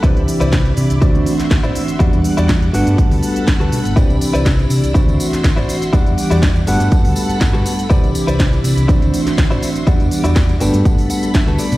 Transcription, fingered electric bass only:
\new Staff \with { instrumentName = "Fingered electric bass" } { \clef bass \time 4/4 \key g \major \tempo 4 = 122 c,16 c,16 r16 c,8 r16 c16 c,16 r16 d,16 r8 d,16 a,,16 r8 | e,16 e,16 r16 e,8 r16 g,,16 g,16 r16 d,16 r8. d,16 b,16 g,,16 | c,16 c,16 r16 c,8 r16 c16 c,16 r16 d,16 r8 d,16 a,,16 r8 | e,16 e,16 r16 e,8 r16 g,,16 g,16 r16 d,16 r8 g,16 g,,16 r8 |
c,16 c,16 r16 c,8 r16 c16 c,16 r16 d,16 r8 d,16 a,,16 r8 | e,16 e,16 r16 e,8 r16 g,,16 g,16 r4 r16 d,16 r16 b,16 | }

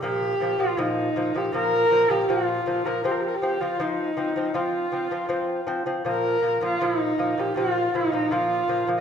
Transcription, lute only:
\new Staff \with { instrumentName = "Lute" } { \clef bass \time 4/4 \tempo 4 = 80 <bes, f>8 <bes, f>16 <bes, f>16 <bes, f>8 <bes, f>16 <bes, f>16 <bes, f>8 <bes, f>16 <bes, f>16 <bes, f>8 <bes, f>16 <bes, f>16 | <f c'>8 <f c'>16 <f c'>16 <f c'>8 <f c'>16 <f c'>16 <f c'>8 <f c'>16 <f c'>16 <f c'>8 <f c'>16 <f c'>16 | <bes, f>8 <bes, f>16 <bes, f>16 <bes, f>8 <bes, f>16 <bes, f>16 <bes, f>8 <bes, f>16 <bes, f>16 <bes, f>8 <bes, f>16 <bes, f>16 | }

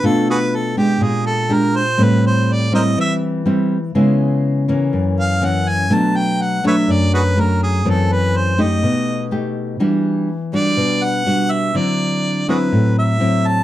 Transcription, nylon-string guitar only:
\new Staff \with { instrumentName = "Nylon-string guitar" } { \time 4/4 \key b \phrygian \tempo 4 = 123 << { <a d' f'>4. <aes d' g'>4. <aes d' g'>8 r8 | <g c' e'>4. <g c' e'>4. <g c' e'>8 r8 | <gis b e'>4. <e bes cis'>4. <e ais cis'>4 | <fis a d'>4. <fis a d'>4. <fis a d'>4 |
<e a c'>4. <a ees' g'>4. <a dis' g'>4 | <g d' fis'>4 r8 <g d' fis'>4. <g d' fis'>4 | <fis c' e'>4. <fis c' e'>4. <fis c' e'>4 | } \\ { b,2 bes,2 | a,2 e2 | cis2 fis,2 | b,2 fis,2 |
fis,2 b,2 | e2 b,2 | d2 a,2 | } >> }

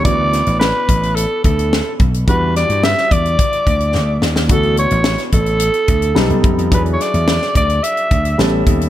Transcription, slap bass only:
\new Staff \with { instrumentName = "Slap bass" } { \clef bass \time 4/4 \key d \major \tempo 4 = 108 d,8. a,,8 r16 a,,8. r16 d,8. r16 b,,8 | e,8. g,8 r16 e,8 r8 d,8 d,8 ees,8 | d,8. a,,8 r16 a,,8. r16 d,8 b,,16 b,,16 fis,16 f,16 | e,8 r16 e,8 r16 d,8 r8 d,8 a,,8 ees,8 | }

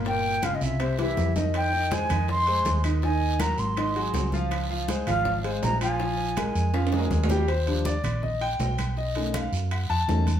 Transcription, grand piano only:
<<
  \new Staff \with { instrumentName = "Grand piano" } { \time 4/4 \key ees \major \tempo 4 = 162 <bes, bes bes'>4 <des des' f'>4 <c c' c''>8 <e e' g'>4 <ees ees' ees''>8~ | <ees ees' ees''>8 <ees ees' ees''>8 <aes aes' c''>8 <ees ees' ees''>4 <aes aes' c''>4 <ees ees' ees''>8 | <ees ees' ees''>4 <ges ges' bes'>4 <ees ees' ees''>8 <ges ges' aes'>4 <f f' f''>8~ | <f f' f''>8 <f f' f''>8 <aes aes' c''>8 <f f' f''>4 <aes aes' c''>4 <f f' f''>8 |
<f f' f''>4 <aes aes' bes'>4 <f f' f''>8 <aes aes' bes'>4 <g g' g''>8 | c''4 d''4 ees''8 g''4. | dis''4 f''4 fis''8 a''4. | }
  \new Staff \with { instrumentName = "Grand piano" } { \time 4/4 \key ees \major r1 | r1 | r1 | r1 |
r1 | r8 <f g d'>8 r2. | r8 <dis a des'>8 r2 <dis a des'>8 r8 | }
>>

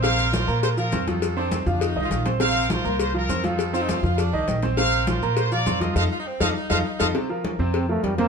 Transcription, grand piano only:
\new Staff \with { instrumentName = "Grand piano" } { \time 4/4 \key bes \major \tempo 4 = 203 <c c' c''>4 <f f' f''>8 <bes bes' bes''>4 <f f' f''>8 <c' c'' c'''>8 <f f' f''>8~ | <f f' f''>8 <c' c'' c'''>4 <f f' f''>4 <ees ees' ees''>4 <c' c'' c'''>8 | <c c' c''>4 <f f' f''>8 <bes bes' bes''>4 <f f' f''>8 <c' c'' c'''>8 <f f' f''>8~ | <f f' f''>8 <c' c'' c'''>4 <f f' f''>4 <ees ees' ees''>4 <c' c'' c'''>8 |
<c c' c''>4 <f f' f''>8 <bes bes' bes''>4 <f f' f''>8 <c' c'' c'''>8 <f f' f''>8 | <ees' f' a'>8 r4 <ees' f' a'>8 r8 <ees' f' a'>8 r8 <ees' f' a'>8 | <c c' c''>8 <f f' bes'>4 <c c' c''>4 <f f' bes'>4 <c c' c''>8 | }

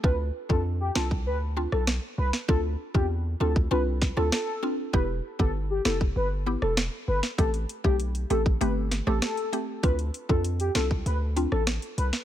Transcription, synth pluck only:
\new Staff \with { instrumentName = "Synth pluck" } { \time 4/4 \key d \dorian \tempo 4 = 98 <c' d' f'>16 r8 <c' d' f'>8. <c' d' f'>8 r8 <c' d' f'>16 r4 r16 | <c' d' f'>16 r8 <c' d' f'>8. <c' d' f'>8 <c' d' f'>8. <c' d' f'>8. <c' d' f'>8 | <b e' g'>16 r8 <b e' g'>8. <b e' g'>8 r8 <b e' g'>16 r4 r16 | <a c' g'>16 r8 <a c' g'>8. <a c' g'>8 <a c' g'>8. <a c' g'>8. <a c' g'>8 |
<c' d' f'>16 r8 <c' d' f'>8. <c' d' f'>8 r8 <c' d' f'>16 r4 r16 | }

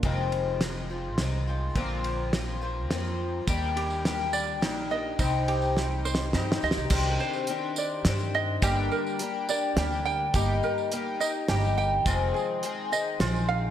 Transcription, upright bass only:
\new Staff \with { instrumentName = "Upright bass" } { \clef bass \time 3/4 \key ees \major \tempo 4 = 105 f,,2 c,4 | bes,,2 f,4 | ees,2 bes,,4 | c,2 g,8 d,16 c,16 |
c,8 r4. g,4 | g,,8 r4. d,4 | g,,8 r4. g,,4 | f,,8 r4. bes,,4 | }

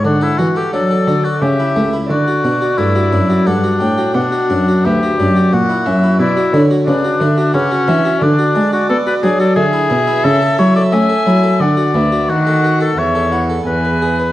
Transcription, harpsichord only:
<<
  \new Staff \with { instrumentName = "Harpsichord" } { \time 3/4 \key d \major \tempo 4 = 88 r16 a'16 fis'16 a'16 d'16 a'16 fis'16 a'16 r16 e'16 a16 e'16 | r16 fis'16 d'16 fis'16 a16 fis'16 d'16 fis'16 a'16 fis'16 d'16 fis'16 | r16 fis'16 d'16 fis'16 b16 fis'16 d'16 fis'16 r16 e'16 cis'16 e'16 | r16 fis'16 d'16 fis'16 b16 fis'16 d'16 fis'16 b'16 fis'16 d'16 fis'16 |
\key a \major r16 fis'16 d'16 fis'16 b16 fis'16 d'16 fis'16 r16 e'16 b16 e'16 | r16 a'16 e'16 a'16 cis'16 a'16 e'16 a'16 r16 fis'16 b16 fis'16 | r16 a'16 fis'16 a'16 r16 a'16 e'16 a'16 r16 b'16 gis'16 b'16 | }
  \new Staff \with { instrumentName = "Harpsichord" } { \clef bass \time 3/4 \key d \major d8 e8 fis8 d8 cis8 cis,8 | d8 b,8 g,8 fis,8 g,8 a,8 | b,8 fis,8 d,8 fis,8 ais,8 fis,8 | b,8 d8 cis8 d8 cis8 e8 |
\key a \major d8 gis8 r8 fis8 d8 b,8 | cis8 fis8 a8 fis8 d8 d,8 | dis4 e,4 e,4 | }
>>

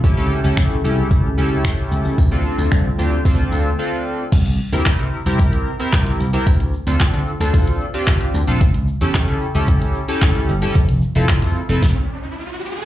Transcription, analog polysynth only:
\new Staff \with { instrumentName = "Analog polysynth" } { \time 4/4 \key d \minor \tempo 4 = 112 <cis' e' g' a'>16 <cis' e' g' a'>8 <cis' e' g' a'>8. <cis' e' g' a'>8. r16 <cis' e' g' a'>4. | r16 <c' d' f' a'>4 r16 <c' d' f' g'>8 <c' d' f' a'>8. r16 <c' d' f' a'>8. r16 | r8. <c' e' g' bes'>8. r16 <c' e' g' bes'>8. r16 <c' e' g' bes'>8. r16 <c' e' g' bes'>16 | r8. <c' d' f' a'>8. r16 <c' d' f' a'>8. r16 <c' d' f' g'>8. r16 <c' d' f' a'>16 |
r8. <cis' e' g' a'>8. r16 <cis' e' g' a'>8. r16 <cis' e' g' a'>8. r16 <cis' e' g' a'>16 | r8. <c' e' f' a'>8. r16 <c' e' f' a'>16 r2 | }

